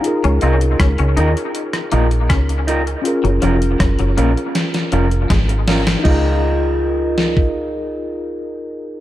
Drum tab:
CC |----------------|----------------|x---------------|
HH |xxxxxxxxxxxxxxxx|xxxxxxxxxxxxxxox|----------------|
SD |----r----r--r---|----r---oo--o-oo|------o---------|
BD |----o-------o---|----o-------o---|o------o--------|